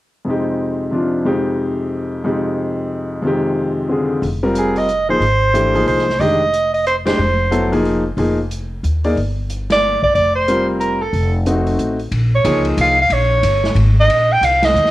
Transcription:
0.25 1.24 F2 soft
0.25 0.89 C3 soft
0.25 1.24 G#3 soft
0.29 1.25 D#4 soft
0.29 1.25 G4 soft
0.91 1.24 C3 soft
0.91 1.26 F3 soft
0.91 1.26 D4 soft
0.91 1.27 F4 soft
1.25 2.23 F2 soft
1.25 2.23 C3 soft
1.25 2.23 G#3 soft
1.25 2.24 D#4 soft
1.25 2.24 G4 medium
2.24 3.21 F2 soft
2.24 3.22 C3 soft
2.24 3.23 G#3 soft
2.24 3.24 D#4 soft
2.24 3.24 G4 soft
3.22 4.22 F2 medium
3.22 4.23 C3 soft
3.22 4.23 G#3 soft
3.26 4.24 D#3 soft
3.26 4.24 G4 medium
3.89 4.22 D3 soft
3.89 4.23 C4 soft
3.89 4.23 F4 soft
3.89 4.24 G#4 soft
4.22 5.17 F1 medium
4.22 open hi-hat soft
4.43 4.86 G3 medium
4.43 4.86 C4 soft
4.43 4.86 F4 medium
4.43 4.86 A#4 medium
4.55 4.80 G#4 medium
4.55 closed hi-hat soft
4.76 5.09 D#5 medium
4.76 open hi-hat soft
4.89 closed hi-hat soft
5.09 5.20 F3 soft
5.09 5.20 A#3 soft
5.09 5.20 D#4 soft
5.09 5.21 G#4 medium
5.09 5.84 C5 loud
5.20 5.83 G#1 medium
5.20 open hi-hat soft
5.54 5.73 E3 medium
5.54 5.73 A3 soft
5.54 5.73 D4 soft
5.54 5.73 G4 medium
5.54 closed hi-hat medium
5.74 6.03 F3 medium
5.74 6.04 A#3 soft
5.74 6.04 D#4 soft
5.74 6.04 G#4 medium
5.74 open hi-hat soft
5.86 6.18 C2 medium
5.86 6.21 C5 medium
5.86 open hi-hat soft
5.98 snare soft
6.09 snare soft
6.20 7.15 F1 medium
6.20 6.39 D#3 medium
6.20 6.39 G#3 soft
6.20 6.39 D4 soft
6.20 6.39 G4 medium
6.20 6.73 D#5 loud
6.20 open hi-hat soft
6.54 closed hi-hat medium
6.74 6.85 D#5 medium
6.74 open hi-hat soft
6.86 6.96 C5 medium
6.86 closed hi-hat soft
7.05 7.17 G#3 medium
7.05 7.17 D4 medium
7.05 7.17 G4 medium
7.05 7.18 C5 medium
7.05 7.68 C5 medium
7.05 snare medium
7.05 ride medium
7.19 8.14 F1 medium
7.51 7.70 F#3 medium
7.51 7.70 B3 medium
7.51 7.70 E4 soft
7.51 7.70 A4 medium
7.51 closed hi-hat medium
7.72 8.01 F3 medium
7.72 8.01 A#3 medium
7.72 8.02 D#4 medium
7.72 8.01 G#4 medium
7.72 open hi-hat soft
7.85 open hi-hat soft
8.17 8.79 F1 medium
8.17 8.36 F3 medium
8.17 8.36 A#3 soft
8.17 8.36 D#4 medium
8.17 8.37 G#4 medium
8.17 open hi-hat soft
8.51 closed hi-hat medium
8.83 9.14 D#2 medium
8.83 closed hi-hat soft
9.04 9.16 A#3 medium
9.04 9.16 D#4 soft
9.04 9.16 G#4 medium
9.04 9.16 D5 medium
9.04 open hi-hat soft
9.16 9.98 G1 medium
9.16 open hi-hat soft
9.50 closed hi-hat medium
9.70 10.02 D5 loud
9.70 snare medium
9.70 ride medium
10.02 10.14 D5 medium
10.02 muted upright bass stroke soft
10.02 kick soft
10.15 11.10 F1 medium
10.15 10.34 D5 medium
10.15 open hi-hat soft
10.35 10.66 C5 medium
10.48 10.97 G3 soft
10.48 10.97 C4 soft
10.48 10.97 F4 soft
10.48 10.98 A#4 soft
10.48 closed hi-hat medium
10.80 11.03 A#4 medium
10.80 closed hi-hat soft
11.02 11.34 A4 medium
11.13 11.75 F1 medium
11.13 open hi-hat soft
11.46 11.96 A3 soft
11.46 11.96 C4 soft
11.46 11.96 D#4 soft
11.46 11.96 F#4 medium
11.46 closed hi-hat medium
11.67 open hi-hat soft
11.79 12.10 A1 medium
11.79 closed hi-hat soft
11.99 open hi-hat soft
12.11 12.44 A#1 medium
12.11 ride medium
12.35 12.64 C#5 medium
12.44 12.77 C#2 medium
12.44 12.94 F3 soft
12.44 12.94 A#3 soft
12.44 12.94 D#4 medium
12.44 12.94 G#4 medium
12.44 hi-hat pedal medium
12.44 ride medium
12.65 ride soft
12.77 13.09 C2 medium
12.77 12.98 F5 medium
12.77 hi-hat pedal medium
12.77 ride medium
13.02 13.15 F5 medium
13.10 13.42 A#1 medium
13.10 13.78 C#5 medium
13.10 ride medium
13.43 13.74 G1 medium
13.43 hi-hat pedal medium
13.43 ride medium
13.64 snare soft
13.75 14.08 G#1 medium
13.75 ride medium
14.00 14.34 D#5 loud
14.08 14.41 A#1 medium
14.08 ride medium
14.32 14.46 G5 loud
14.41 14.74 C2 medium
14.41 14.67 F5 loud
14.41 hi-hat pedal medium
14.41 ride medium
14.62 14.91 D#5 medium
14.62 snare medium
14.62 ride medium
14.74 14.91 D#2 medium
14.74 hi-hat pedal medium
14.86 snare soft

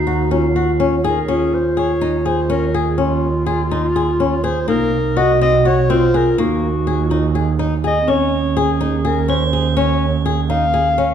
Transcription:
0.00 1.25 D#2 medium
0.00 0.77 D#4 medium
0.00 0.34 F#4 medium
0.07 0.21 F#4 medium
0.31 0.45 C#4 medium
0.31 1.07 F4 medium
0.56 0.70 F#4 medium
0.80 0.94 C#4 medium
1.04 1.27 D#4 medium
1.04 1.18 G#4 medium
1.04 1.32 A#4 medium
1.28 4.70 D#2 medium
1.28 1.56 C#4 medium
1.28 4.79 F4 medium
1.28 1.56 G#4 medium
1.54 1.78 C5 medium
1.77 1.91 G#4 medium
1.77 2.28 C#5 medium
2.01 2.15 D#4 medium
2.26 2.40 G#4 medium
2.26 2.52 C5 medium
2.50 2.64 C#4 medium
2.50 2.77 A#4 medium
2.74 2.88 G#4 medium
2.74 2.99 G#4 medium
2.98 3.26 C#4 medium
2.98 4.46 F4 loud
3.46 3.61 G#4 medium
3.71 3.85 D#4 medium
3.96 4.10 G#4 medium
4.20 4.34 C#4 medium
4.44 4.58 G#4 medium
4.44 4.69 C5 loud
4.68 6.40 C2 medium
4.68 4.96 A#3 medium
4.68 5.14 D#4 medium
4.68 5.19 A#4 loud
5.17 5.31 F#4 medium
5.17 5.92 F#4 medium
5.17 5.42 D#5 loud
5.41 5.55 C4 medium
5.41 5.68 D#5 loud
5.65 5.79 F#4 medium
5.65 5.93 C#5 loud
5.90 6.04 C4 medium
5.90 6.35 F4 loud
5.90 6.18 C5 loud
6.14 6.28 G#4 medium
6.14 6.39 A#4 loud
6.38 8.08 D#2 medium
6.38 6.66 A#3 medium
6.38 7.06 D#4 medium
6.38 7.54 F#4 medium
6.87 7.01 G#4 medium
7.04 7.11 F4 medium
7.10 7.79 D#4 medium
7.10 7.25 D#4 medium
7.35 7.49 G#4 medium
7.59 7.73 D#4 medium
7.84 7.98 G#4 medium
7.84 8.12 D#5 loud
8.01 8.08 C4 medium
8.07 11.14 D#2 medium
8.07 11.14 C#4 medium
8.07 8.36 C#4 medium
8.07 8.59 C#5 loud
8.07 9.28 G#7 medium
8.57 8.71 G#4 medium
8.57 9.08 G#4 medium
8.81 8.95 D#4 medium
9.05 9.19 G#4 medium
9.05 9.31 A#4 medium
9.28 9.43 C#4 medium
9.28 9.77 C5 loud
9.28 10.83 G#7 medium
9.53 9.67 G#4 medium
9.77 10.05 C#4 loud
9.77 10.23 C#5 loud
10.26 10.40 G#4 medium
10.50 10.64 D#4 medium
10.50 11.14 F5 loud
10.74 10.88 G#4 medium
10.98 11.12 C#4 medium

